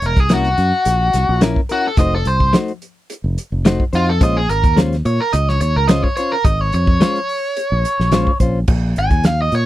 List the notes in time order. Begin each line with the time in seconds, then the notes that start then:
0.02 E1, closed hi-hat
0.06 A#4
0.16 C2 G#4, kick, closed hi-hat
0.29 A#3 C#4 E4 A#4, snare, closed hi-hat
0.34 F#4
0.44 closed hi-hat
0.58 F#2, closed hi-hat
0.85 A#1, closed hi-hat
1.13 C2, snare, closed hi-hat
1.29 A#1
1.41 A#3 C#4 E4 A#4, snare, closed hi-hat
1.56 kick
1.69 C#4 E4 F#4 A#4, closed hi-hat
1.87 A4
1.97 F1 A3 D#4 F#4 C5 D#5, kick, closed hi-hat
2.15 A4
2.25 C2 C5, closed hi-hat
2.40 kick
2.53 A3 D#4 F#4 C5, snare, closed hi-hat
2.68 closed hi-hat
2.82 closed hi-hat
3.10 closed hi-hat
3.24 F1
3.38 closed hi-hat
3.52 F1
3.65 A3 D#4 F#4 C5, snare, closed hi-hat
3.80 kick
3.93 F2 D#4 F4 F#4 C5, closed hi-hat
4.09 A4
4.21 A#1 G#3 C#4 F4 C5 D#5, kick, closed hi-hat
4.37 G#4
4.49 G#1 A#4, closed hi-hat
4.64 D#2, kick, closed hi-hat
4.77 G#3 C#4 F4 C5, snare, closed hi-hat
4.93 snare, closed hi-hat
5.05 A#2 C#5, closed hi-hat
5.20 A#4
5.33 C#2 D#5, closed hi-hat
5.49 C#5, snare
5.61 D#2 C#5, closed hi-hat
5.76 C#2 A#4
5.88 G#3 C#4 F4 C5 D#5, snare, closed hi-hat
6.03 C#5, kick
6.17 C#4 F4 C5 C#5, closed hi-hat
6.32 A#4
6.45 G#1 D#5, kick, closed hi-hat
6.61 C#5
6.73 F2 C#5, closed hi-hat
6.87 kick
7.01 G#3 C#4 F4 C5, snare, closed hi-hat
7.16 closed hi-hat
7.29 open hi-hat
7.57 closed hi-hat
7.72 A#1
7.85 closed hi-hat
7.99 A#1, snare
8.12 G#3 C#4 F4 C5, snare, closed hi-hat
8.27 kick
8.40 A#1 C#4 F4 C5, kick, closed hi-hat
8.68 A#1, kick, crash
8.96 G#1 G#5, closed hi-hat
9.10 D#2, kick, closed hi-hat
9.24 F5, snare, closed hi-hat
9.42 D#5
9.52 A#2 C#5, closed hi-hat